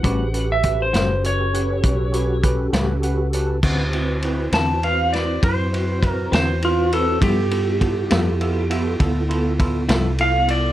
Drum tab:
CC |------------|x-----------|------------|
RD |------------|-xxxxxxxxxxx|xxxxxxxxxxxx|
HH |xxxxxxxxxxxx|------------|------------|
SD |---o-----o--|---o-o---o--|---o-----o--|
BD |o-o---o-o---|o-----o-o---|o-o---o-o---|